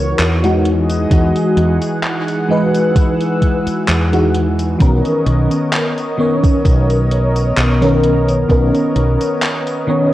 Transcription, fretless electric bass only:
0.00 0.13 C#2 loud
0.19 1.05 E2 medium
1.11 1.31 E2 loud
1.57 1.78 E2 medium
3.67 muted fretless electric bass stroke soft
3.88 4.74 E2 medium
4.80 5.01 B1 loud
5.26 5.47 B1 medium
6.65 7.51 B1 loud
7.57 8.44 B1 medium
8.50 8.70 B1 loud
8.96 9.16 B1 medium

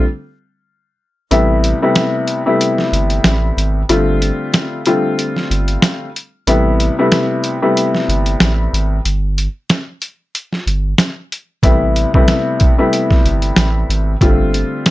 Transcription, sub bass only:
1.31 1.74 A1 loud
2.92 3.19 G1 medium
3.25 3.52 A1 medium
3.57 3.84 G#1 medium
3.89 4.32 G1 loud
5.50 5.77 G1 medium
6.47 6.90 A1 loud
8.08 8.35 G1 medium
8.41 8.68 A1 medium
8.73 9.00 G#1 medium
9.05 9.48 G1 loud
10.66 10.94 G1 medium
11.63 12.06 A1 loud
13.24 13.52 G1 medium
13.57 13.84 A1 medium
13.89 14.16 G#1 medium
14.21 14.64 G1 loud

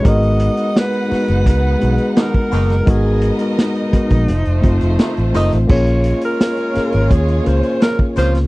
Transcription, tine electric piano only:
0.03 0.71 G#3 loud
0.03 0.72 B3 medium
0.03 0.72 D#4 medium
0.03 0.72 F#4 loud
0.03 0.73 A#4 loud
1.08 1.55 G#3 medium
1.08 1.55 B3 medium
1.08 1.55 D#4 medium
1.08 1.56 F#4 medium
1.08 1.56 B4 medium
1.79 2.48 G#3 medium
1.79 2.48 B3 medium
1.79 2.49 D#4 medium
1.79 2.49 F#4 medium
1.79 2.50 G#4 medium
2.85 3.20 G#3 medium
2.85 3.20 B3 medium
2.85 3.21 D#4 medium
2.85 3.21 F#4 medium
2.85 3.22 A#4 loud
3.38 3.73 G#3 medium
3.38 3.73 B3 medium
3.38 3.74 D#4 medium
3.38 3.74 F#4 medium
3.38 3.75 A#4 medium
3.92 4.28 G#3 medium
3.92 4.28 B3 medium
3.92 4.29 D#4 medium
3.92 4.29 F#4 medium
3.92 4.29 A#4 medium
4.61 5.07 A3 medium
4.61 5.08 C4 medium
4.61 5.08 D#4 medium
4.61 5.09 F4 medium
4.61 5.09 C5 loud
5.32 5.56 A3 medium
5.32 5.56 C4 medium
5.32 5.57 D#4 medium
5.32 5.57 F4 medium
5.32 5.57 C5 medium
5.67 6.36 A#3 loud
5.67 6.36 C#4 medium
5.67 6.36 F4 medium
5.67 6.37 G#4 medium
5.67 6.37 C#5 loud
6.74 7.19 A#3 medium
6.74 7.20 C#4 medium
6.74 7.20 F4 medium
6.74 7.21 G#4 medium
6.74 7.21 C#5 medium
7.44 8.12 A#3 medium
7.44 8.13 C#4 medium
7.44 8.13 F4 medium
7.44 8.13 G#4 medium
7.44 8.14 A#4 medium

